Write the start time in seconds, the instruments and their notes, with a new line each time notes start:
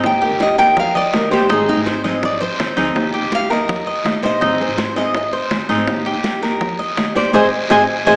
Already playing: cuban tres D#4
0.03 upright bass D#2, steel-string acoustic guitar D#3 A#3 D#4 G4, nylon-string guitar G5, high bongo, long guiro
0.22 steel-string acoustic guitar A#3 D#4 G4, cuban tres G4, nylon-string guitar A#4, high conga
0.31 upright bass D#2
0.40 nylon-string guitar D#5, high bongo, high conga, short guiro
0.58 steel-string acoustic guitar A#3 D#4 G4, cuban tres A#4, nylon-string guitar G5, high conga, short guiro
0.76 nylon-string guitar F5, muted steel-string acoustic guitar stroke, high bongo, high conga, low conga, long guiro
0.95 nylon-string guitar D5, cuban tres D#5, high conga, low conga
1.13 steel-string acoustic guitar D#3 A#3 D#4 G4, nylon-string guitar A#4, high bongo, low bongo, high conga, short guiro
1.31 upright bass D#2, steel-string acoustic guitar A#3 D#4 G4, nylon-string guitar G4, cuban tres C5, high conga, short guiro
1.49 upright bass G#1, steel-string acoustic guitar D#3 G#3 C4 D#4 G#4, cuban tres D#4, nylon-string guitar G#4, high bongo, high conga, long guiro
1.67 steel-string acoustic guitar C4 D#4 G#4, nylon-string guitar D#4, high bongo, high conga
1.77 upright bass G#1
1.86 cuban tres C5, high bongo, short guiro
2.04 steel-string acoustic guitar G#3 C4 D#4 G#4, cuban tres D#5, low conga, short guiro
2.22 nylon-string guitar D5, muted steel-string acoustic guitar stroke, high bongo, low conga, long guiro
2.40 cuban tres C5, nylon-string guitar C5, high bongo, low conga
2.59 steel-string acoustic guitar G#3 C4 D#4 G#4, high bongo, low bongo, short guiro
2.77 upright bass D2, steel-string acoustic guitar G#3 C4 D#4 G#4, cuban tres D#4, high bongo, low conga, short guiro
2.95 upright bass D#2, steel-string acoustic guitar D#3 A#3 D#4 G4, high bongo, high conga, long guiro
3.13 steel-string acoustic guitar A#3 D#4 G4, cuban tres G4, high conga
3.23 upright bass D#2
3.32 nylon-string guitar F5, high bongo, high conga, short guiro
3.49 steel-string acoustic guitar A#3 D#4 G4, cuban tres A#4, nylon-string guitar D#5, short guiro
3.68 muted steel-string acoustic guitar stroke, high bongo, high conga, low conga, long guiro
3.87 cuban tres D#5, high conga
4.04 steel-string acoustic guitar D#3 A#3 D#4 G4, high bongo, low bongo, high conga, short guiro
4.22 upright bass A#1, steel-string acoustic guitar A#3 D#4 G4, cuban tres C5, nylon-string guitar D#5, high conga, short guiro
4.41 upright bass G#1, steel-string acoustic guitar D#3 G#3 C4 D#4 G#4, cuban tres D#4, high bongo, high conga, long guiro
4.60 steel-string acoustic guitar C4 D#4 G#4, nylon-string guitar C5, high bongo, high conga
4.69 upright bass G#1
4.78 cuban tres C5, high bongo, high conga, short guiro
4.96 steel-string acoustic guitar G#3 C4 D#4 G#4, cuban tres D#5, nylon-string guitar D#5, short guiro
5.14 nylon-string guitar D#5, muted steel-string acoustic guitar stroke, high bongo, high conga, long guiro
5.33 cuban tres C5, high bongo, high conga
5.51 steel-string acoustic guitar G#3 C4 D#4 G#4, high bongo, low bongo, high conga, short guiro
5.69 upright bass G#1, steel-string acoustic guitar G#3 C4 D#4 G#4, cuban tres D#4, high bongo, high conga, short guiro
5.87 upright bass D#2, steel-string acoustic guitar D#3 A#3 D#4 G4, high bongo, high conga, long guiro
6.05 steel-string acoustic guitar A#3 D#4 G4, cuban tres G4, high conga
6.15 upright bass D#2
6.24 high bongo, high conga, short guiro
6.42 steel-string acoustic guitar A#3 D#4 G4, cuban tres A#4, high conga, short guiro
6.61 muted steel-string acoustic guitar stroke, high bongo, high conga, low conga, long guiro
6.79 cuban tres D#5, high conga
6.97 steel-string acoustic guitar D#3 A#3 D#4 G4, high bongo, low bongo, high conga, short guiro
7.15 upright bass D#2, steel-string acoustic guitar A#3 D#4 G4, cuban tres C5, nylon-string guitar D5, high conga, short guiro
7.33 upright bass G#1, steel-string acoustic guitar C4 D#4 G#4, cuban tres G#4 C5 D#5, nylon-string guitar C5 D#5 G#5, low bongo, high conga, long guiro
7.70 upright bass G#1, steel-string acoustic guitar C4 D#4 G#4, cuban tres G#4 C5 D#5, nylon-string guitar C5 D#5 G#5, low bongo, high conga, long guiro
8.06 upright bass G#1, steel-string acoustic guitar C4 D#4 G#4, cuban tres G#4 C5 D#5, nylon-string guitar C5 D#5 G#5, low bongo, high conga, long guiro